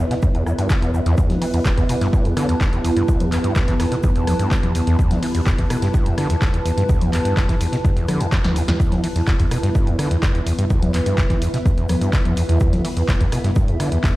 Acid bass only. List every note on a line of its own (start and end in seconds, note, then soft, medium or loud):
0.11 0.15 B2 medium
0.23 0.29 E2 medium
0.35 0.44 E2 medium
0.46 0.53 E2 medium
0.58 0.68 G2 medium
0.70 0.74 D3 medium
0.82 0.92 E2 medium
0.94 1.01 E2 medium
1.06 1.16 E2 loud
1.18 1.31 E2 medium
1.30 1.40 D2 loud
1.42 1.46 E3 medium
1.54 1.60 E2 medium
1.65 1.72 E1 loud
1.78 1.84 E2 medium
1.89 1.96 B2 medium
2.01 2.08 G2 loud
2.13 2.27 G2 medium
2.25 2.35 E2 medium
2.37 2.47 D3 loud
2.49 2.55 E2 medium
2.61 2.67 E1 loud
2.73 2.79 E2 medium
2.84 2.91 E2 medium
2.97 3.03 G2 loud
3.08 3.22 D2 medium
3.20 3.30 E2 medium
3.32 3.39 E2 medium
3.44 3.54 G2 medium
3.56 3.63 E1 loud
3.68 3.74 E3 loud
3.80 3.86 E2 medium
3.92 3.96 B2 medium
4.04 4.10 E2 medium
4.16 4.25 E2 medium
4.27 4.34 E2 medium
4.39 4.49 G2 medium
4.51 4.55 D3 medium
4.63 4.73 E2 medium
4.75 4.82 E2 medium
4.87 4.97 E2 loud
5.11 5.21 D2 loud
5.23 5.27 E3 medium
5.35 5.41 E2 medium
5.46 5.53 E1 loud
5.59 5.65 E2 medium
5.70 5.77 B2 medium
5.82 5.89 G2 loud
5.94 6.08 G2 medium
6.06 6.16 E2 medium
6.18 6.28 D3 loud
6.30 6.36 E2 medium
6.42 6.48 E1 loud
6.54 6.60 E2 medium
6.65 6.72 E2 medium
6.77 6.84 G2 loud
6.89 7.03 D2 medium
7.01 7.11 E2 medium
7.13 7.20 E2 medium
7.25 7.35 G2 medium
7.37 7.43 E1 medium
7.49 7.55 E3 medium
7.61 7.67 E2 medium
7.73 7.77 B2 medium
7.84 7.91 E2 medium
7.96 8.06 E2 medium
8.08 8.22 D3 medium
8.20 8.27 E2 medium
8.32 8.39 E2 medium
8.44 8.57 D2 medium
8.56 8.63 E2 medium
8.68 8.72 E2 loud
8.80 8.93 E2 medium
8.92 9.02 D2 loud
9.04 9.08 E3 medium
9.16 9.22 E2 medium
9.27 9.34 E1 loud
9.39 9.46 E2 medium
9.51 9.58 B2 medium
9.63 9.70 G2 loud
9.75 9.88 G2 medium
9.87 9.97 E2 medium
9.99 10.09 D3 loud
10.11 10.17 E2 medium
10.23 10.29 E1 loud
10.35 10.41 E2 medium
10.46 10.53 E2 medium
10.59 10.65 G2 medium
10.70 10.84 D2 medium
10.82 10.92 E2 medium
10.94 11.01 E2 medium
11.06 11.16 G2 medium
11.18 11.25 E1 loud
11.30 11.36 E3 loud
11.42 11.48 E2 medium
11.54 11.58 B2 medium
11.66 11.72 E2 medium
11.78 11.87 E2 medium
11.89 11.96 E2 medium
12.01 12.11 G2 medium
12.13 12.17 D3 medium
12.25 12.35 E2 medium
12.37 12.44 E2 medium
12.49 12.59 E2 loud
12.61 12.74 E2 medium
12.73 12.82 D2 loud
12.85 12.89 E3 medium
12.97 13.03 E2 medium
13.08 13.15 E1 loud
13.20 13.27 E2 medium
13.32 13.39 B2 medium
13.44 13.51 G2 loud
13.56 13.70 G2 medium
13.68 13.78 E2 medium
13.80 13.90 D3 loud
13.92 13.98 E2 medium
14.04 14.10 E1 loud